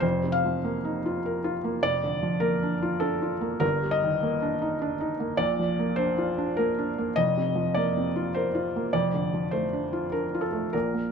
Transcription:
0.00 F1 F2 C5
0.24 C3
0.32 F5
0.45 F3
0.64 A#3
0.85 D#4
1.06 F4
1.26 A#4
1.44 F4
1.64 A#3
1.83 F1 F2 D5
2.03 D3
2.23 F3
2.40 A#3 A#4
2.63 D4
2.82 F4
3.00 D4 A4
3.22 F4
3.41 A#3
3.60 G1 G2 A#4
3.83 G3
3.91 D#5
4.04 D#3
4.23 A#3
4.42 D4
4.62 D#4
4.82 D4
5.01 D#4
5.20 A#3
5.37 A#1 A#2 D5
5.59 F3
5.79 A#3
5.96 D4 C5
6.18 F4
6.38 D4
6.57 A#3 A#4
6.79 D4
6.98 A#3
7.16 F1 F2 D#5
7.37 C3
7.55 F3
7.74 A#3 D5
7.97 C4
8.16 F4
8.34 A#4 C5
8.55 F4
8.76 A#3
8.93 F1 F2 D5
9.14 D3
9.34 F3
9.51 A3 C5
9.73 D4
9.93 F4
10.12 D4 A#4
10.34 F4
10.41 A4
10.52 A3
10.73 A#1 A#2 A#4
10.94 A#3

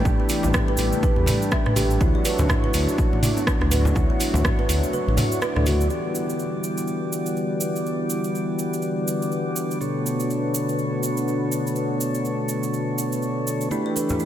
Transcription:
Already playing: E3 G3 A3 D4 G4
0.05 A1 D4 G4 B4, kick, muted conga, cabasa
0.20 B3
0.29 E4, open hi-hat, muted conga, cabasa
0.43 A1, low conga, cabasa
0.54 B3, kick, cross-stick, mid tom, cabasa
0.68 B4, muted conga
0.77 A1 E4, open hi-hat, cabasa
0.93 muted conga, high conga, cabasa
1.03 B4, kick, high conga, cabasa
1.16 E2, muted conga
1.26 mid tom, open hi-hat, high conga, cabasa
1.42 cabasa
1.51 E5, kick, cross-stick, muted conga, cabasa
1.66 A1 B4, cross-stick, mid tom, high conga
1.76 D4 G4 B4, open hi-hat, muted conga, high conga, cabasa
1.91 cabasa
2.00 D2 F#3 E4 F#4 C#5, kick, muted conga, cabasa
2.15 D5
2.25 B4, open hi-hat, muted conga, cabasa
2.38 D2, low conga, cabasa
2.49 E4, kick, cross-stick, mid tom, low conga, cabasa
2.64 B4, muted conga
2.74 D2 D4, open hi-hat, cabasa
2.88 muted conga, high conga, cabasa
2.98 kick, cabasa
3.13 A1, muted conga
3.23 E4 F#4 D5, mid tom, open hi-hat, high conga, cabasa
3.37 B3, cabasa
3.47 kick, cross-stick, muted conga, cabasa
3.61 D2 D4, cross-stick, high conga
3.71 B4, mid tom, open hi-hat, muted conga, cabasa
3.85 E4, high conga, low conga, cabasa
3.95 D2 E4 F#4 C#5, kick, muted conga, cabasa
4.10 B3
4.20 E4, open hi-hat, muted conga, cabasa
4.34 D2, low conga, cabasa
4.44 B3, kick, cross-stick, mid tom, low conga, cabasa
4.59 B4, muted conga
4.69 D2 E4, open hi-hat, cabasa
4.83 muted conga, high conga, cabasa
4.93 B4, high conga, cabasa
5.08 A1, muted conga
5.17 mid tom, open hi-hat, high conga, cabasa
5.32 cabasa
5.42 E4 F#4 B4 D5, cross-stick, muted conga, cabasa
5.56 D2 E4 F#4 A4 D5, cross-stick, mid tom, high conga
5.66 F#4, open hi-hat, muted conga, high conga, cabasa
5.81 B3, cabasa
5.90 D3 E3 G3 B3 E4 F#4 G4 B4 D5, cabasa
6.15 cabasa
6.30 cabasa
6.39 cabasa
6.64 cabasa
6.77 cabasa
6.88 cabasa
7.12 cabasa
7.26 cabasa
7.37 cabasa
7.60 cabasa
7.76 cabasa
7.86 cabasa
8.10 cabasa
8.24 cabasa
8.35 cabasa
8.59 cabasa
8.73 cabasa
8.82 cabasa
9.08 cabasa
9.22 cabasa
9.32 cabasa
9.56 cabasa
9.71 cabasa
9.81 B2 A3 B3 D4 F#4 A4 C#5, cabasa
10.06 cabasa
10.20 cabasa
10.30 cabasa
10.54 cabasa
10.69 cabasa
10.79 cabasa
11.03 cabasa
11.17 cabasa
11.28 cabasa
11.52 cabasa
11.67 cabasa
11.76 cabasa
12.00 cabasa
12.15 cabasa
12.25 cabasa
12.49 cabasa
12.63 cabasa
12.74 cabasa
12.98 cabasa
13.12 cabasa
13.22 cabasa
13.47 cabasa
13.61 cabasa
13.71 E3 A3 D4 E4 G4 A4 B4, muted conga, cabasa
13.86 D5
13.96 B4, muted conga, cabasa
14.09 low conga, cabasa
14.20 E4, cabasa

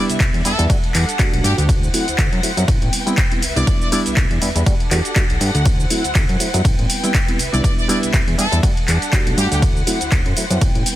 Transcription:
Already playing: G3 B3 D4 E4 B4 E5
0.09 C2, closed hi-hat, shaker
0.20 C2, kick, clap, closed hi-hat, ride, shaker
0.34 E2, closed hi-hat
0.45 E2 G3 B3 D4 E4 A4, open hi-hat, shaker
0.58 E2 G3 B3 D4 E4, closed hi-hat, shaker
0.69 G3 A3 D4 F#4 A4 F#5, kick, closed hi-hat, ride, shaker
0.84 closed hi-hat
0.95 E2, clap, open hi-hat, shaker
1.09 closed hi-hat, shaker
1.19 G3 A3 D4 F#4, kick, clap, closed hi-hat, ride, shaker
1.33 B1, closed hi-hat
1.44 G2 G4, open hi-hat, shaker
1.58 D2 G4, closed hi-hat, shaker
1.69 E4 C5 F#5, kick, closed hi-hat, ride, shaker
1.83 shaker
1.93 F#3 A3 C4 E4, open hi-hat, shaker
2.07 D2, closed hi-hat, shaker
2.18 D2, kick, clap, closed hi-hat, ride, shaker
2.32 F#2, closed hi-hat
2.43 F#3 A3 C4 E4, open hi-hat, shaker
2.57 F#2 G3 B3 C4 E4, closed hi-hat, shaker
2.68 A1 B4 G5, kick, closed hi-hat, ride, shaker
2.82 A1, closed hi-hat
2.93 open hi-hat, shaker
3.06 G3 B3 C4 E4, closed hi-hat, shaker
3.18 kick, clap, closed hi-hat, ride, shaker
3.31 G3 B3 C4 E4, closed hi-hat
3.42 C2 E5, open hi-hat, shaker
3.56 C2 G3 B3 D4 E4 D5, closed hi-hat, shaker
3.67 D5, kick, closed hi-hat, ride, shaker
3.81 D5, shaker
3.92 G3 B3 D4 E4 D5, open hi-hat, shaker
4.06 C2, closed hi-hat, shaker
4.17 C2, kick, clap, closed hi-hat, ride, shaker
4.31 E2, closed hi-hat
4.41 E2 G3 B3 D4 E4, open hi-hat, shaker
4.55 E2 G3 B3 D4 E4, closed hi-hat, shaker
4.66 G3 A3 D4 F#4 G4 A4 F#5, kick, closed hi-hat, ride, shaker
4.80 closed hi-hat
4.91 E2 G3 A3 D4 F#4, clap, open hi-hat, shaker
5.05 closed hi-hat, shaker
5.16 G3 A3 D4 F#4, kick, clap, closed hi-hat, ride, shaker
5.30 B1, closed hi-hat
5.41 G2, open hi-hat, shaker
5.55 D2, closed hi-hat, shaker
5.66 E4 C5, kick, closed hi-hat, ride, shaker
5.80 shaker
5.90 F#3 A3 C4 E4, open hi-hat, shaker
6.04 D2, closed hi-hat, shaker
6.15 D2, kick, clap, closed hi-hat, ride, shaker
6.29 F#2, closed hi-hat
6.40 F#3 A3 C4 E4, open hi-hat, shaker
6.54 F#2 G3 B3 C4 E4, closed hi-hat, shaker
6.65 A1 B4 G5, kick, closed hi-hat, ride, shaker
6.79 A1, closed hi-hat
6.90 open hi-hat, shaker
7.03 G3 B3 C4 E4, closed hi-hat, shaker
7.14 kick, clap, closed hi-hat, ride, shaker
7.28 G3 B3 C4 E4, closed hi-hat
7.39 C2 E5, open hi-hat, shaker
7.53 C2 G3 B3 D4 E4 D5, closed hi-hat, shaker
7.64 D5, kick, closed hi-hat, ride, shaker
7.78 D5, shaker
7.88 G3 B3 D4 E4 D5, open hi-hat, shaker
8.03 C2, closed hi-hat, shaker
8.14 C2, kick, clap, closed hi-hat, ride, shaker
8.28 E2, closed hi-hat
8.38 E2 G3 B3 D4 E4 A4, open hi-hat, shaker
8.52 E2 G3 B3 D4 E4, closed hi-hat, shaker
8.63 G3 A3 D4 F#4 A4 F#5, kick, closed hi-hat, ride, shaker
8.77 closed hi-hat
8.88 E2, clap, open hi-hat, shaker
9.02 closed hi-hat, shaker
9.12 G3 A3 D4 F#4, kick, clap, closed hi-hat, ride, shaker
9.27 B1, closed hi-hat
9.37 G2 G4, open hi-hat, shaker
9.51 D2 G4, closed hi-hat, shaker
9.62 E4 C5, kick, closed hi-hat, ride, shaker
9.77 shaker
9.87 F#3 A3 C4 E4, open hi-hat, shaker
10.01 D2, closed hi-hat, shaker
10.12 D2, kick, clap, closed hi-hat, ride, shaker
10.26 F#2, closed hi-hat
10.36 F#3 A3 C4 E4, open hi-hat, shaker
10.50 F#2 G3 B3 C4 E4, closed hi-hat, shaker
10.61 A1 B4 G5, kick, closed hi-hat, ride, shaker
10.75 A1, closed hi-hat
10.86 open hi-hat, shaker

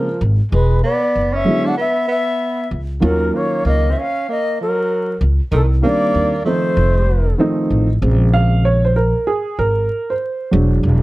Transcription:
Already playing: F3 A#4
0.21 G#1
0.52 E1 G#3 B4
0.83 B3 D5
1.15 F#1
1.33 C#4 E5
1.44 D3 F#3 G#3 B3 E4
1.65 D4 F#5
1.77 B3 E5
2.08 B3 E5
2.71 C#2
3.00 D#2 D#3 F#3 A#3 C#4 F4
3.05 A#4
3.34 A#3 C#5
3.65 C#2 A#3 D#5
3.90 C4 E5
3.97 C#4 F5
4.29 A#3 D#5
4.61 F#3 A#4
5.21 C#2
5.52 C2 D#3 A4
5.82 D#3 G3 A#3 C4 D4 D5
6.14 D#2
6.45 D#3 F3 A3 C4 D#4 C5
6.77 F1
7.38 D#3 F3 A3 C4 D#4
7.70 A1
8.01 A#1 C#3 G#3 C4
8.33 F5
8.65 C#5
8.85 C5
8.96 A#4
9.27 G#4
9.59 G#1 A#4
10.10 C5
10.51 E1 F#3 G#3 D4
10.83 E1

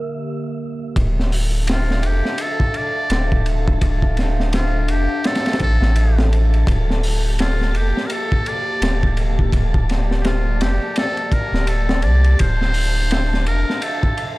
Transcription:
Already playing: D3 A#3 G4 A#4 E5
0.96 D1 D4 A4 E5 F5 A5, kick, ride
1.20 snare
1.32 open hi-hat
1.67 snare, ride
1.72 F4
1.91 snare
2.03 F1 G4, ride
2.25 snare
2.38 ride
2.42 A4
2.60 kick
2.74 D5, ride
3.10 D1, snare, ride
3.32 kick
3.46 ride
3.68 kick
3.81 D1, kick, ride
4.02 kick
4.17 snare, ride
4.40 snare
4.53 F4, snare, ride
4.88 F1 G4, ride
5.24 A4, snare, ride
5.35 snare, ride
5.46 snare, ride
5.53 snare, ride
5.59 A1 A4, kick, ride
5.81 A1, snare
5.96 ride
6.19 snare
6.33 ride
6.54 ride
6.67 D1 A#3 G4, kick, ride
6.90 snare
7.03 open hi-hat
7.39 F4, snare, ride
7.61 snare
7.74 F1 G4, ride
7.97 snare
8.07 A#4, ride
8.12 A4
8.32 kick
8.46 D5, ride
8.82 D1, snare, ride
9.03 kick
9.17 ride
9.39 kick
9.52 D1 D5, kick, ride
9.74 kick
9.89 snare, ride
10.11 snare
10.21 G4, ride
10.25 F4, snare
10.61 F1 G4, snare, ride
10.96 A4, snare, ride
11.17 ride
11.32 A#4, kick, ride
11.53 D1, snare
11.67 A4, ride
11.89 snare
12.02 C2 D5, ride
12.24 ride
12.39 D1 D4 C5 E5 F5 A5, kick, ride
12.62 snare
12.74 open hi-hat
13.11 snare, ride
13.34 snare
13.46 F1 A#4, ride
13.70 snare
13.82 A4, ride
14.03 kick
14.17 ride

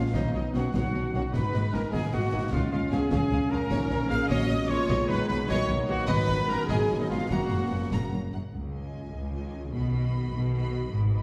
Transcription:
Already playing: G#3 F4 F5
0.13 B1 B2 F#3 B3 D#4 C#5 D#5, concert bass drum, snare
0.33 B1 B2 F#3 D#4 C#5 D#5
0.53 B1 B2 D#3 A#3 C#4 F#4 C#5 F#5, snare
0.73 B1 B2 B3 D#4 F#4 C#5 F#5, concert bass drum, snare
0.93 B1 B2 C#5
1.12 B1 B2 D#3 A#3 C#4 F#4 C#5 F#5
1.32 G#1 G#2 G#3 D#4 B4 D#5 B5, concert bass drum, snare
1.52 G#1 G#2 D#5, snare
1.72 G#1 G#2 D#3 C#4 D#4 A#4 D#5 A#5, snare
1.92 G#1 G#2 B2 B3 G#4 D#5 G#5, concert bass drum, snare
2.12 G#1 G#2 A#3 F#4 D#5 F#5
2.32 G#1 G#2 D#3 D#4 D#5
2.52 C#2 C#3 G#3 C#4 F4 F5, concert bass drum, snare
2.71 C#2 C#3 G#3 F4 F5
2.90 C#2 C#3 F3 B3 C#4 G#4 F5 G#5, snare
3.10 C#2 C#3 C#4 G#4 F5 G#5, concert bass drum, snare
3.30 C#2 C#3 F5
3.50 C#2 C#3 F3 C#4 A#4 F5 A#5
3.69 A#1 A#2 C#3 C#4 D#4 C#5, concert bass drum, snare, crash
3.89 A#1 A#2 C#4 C#5, snare
4.09 A#1 A#2 A#3 G#4 A#4 F5 F6, snare
4.29 A#1 A#2 F#4 C#5 D#5 D#6, concert bass drum, snare
4.49 A#1 A#2 C#5
4.68 A#1 A#2 F4 A#4 C#5 C#6
4.88 B1 B2 D#3 G#3 B3 D#5, concert bass drum, snare
5.08 B1 B2 D#4 B4 D#5 B5
5.28 B1 B2 D#4 B4 C#5 B5, snare
5.48 B1 B2 F#3 F#4 C#5 D#5 C#6, concert bass drum, snare
5.67 B1 B2 D#5
5.86 B1 B2 A#3 F#4 C#5 F#5
6.06 G#1 G#2 D#4 B4 D#5 B5, concert bass drum, snare
6.28 G#1 G#2 D#5, snare
6.47 G#1 G#2 C#4 A#4 B4 A#5, snare
6.68 G#1 G#2 B3 G#4 D#5 G#5, concert bass drum, snare
6.89 G#1 G#2 D#5
7.00 F#3 D#4 D#5
7.09 G#1 G#2 G#3 F4 B4 F5
7.29 F#1 F#2 C#3 A#3 F#4 F#5 A#5, concert bass drum, snare
7.50 F#1 F#2 A#5
7.70 F#1 F#2 F#5
7.91 F#1 F#2 A#5, concert bass drum, snare
8.12 F#1 F#2 A#5
8.32 F#1 F#2 F#5
8.52 C#2 D#3 F4
8.73 F4 D#5 G#5
9.13 C#2
9.33 F4 D#5 G#5
9.71 B1 B2 F#4 D#5 B5
9.93 F#4 D#5 B5
10.32 B1 B2
10.52 F#4 D#5 B5
10.91 G#1 G#2 D#3 B4
11.11 G#4 D#5 B5

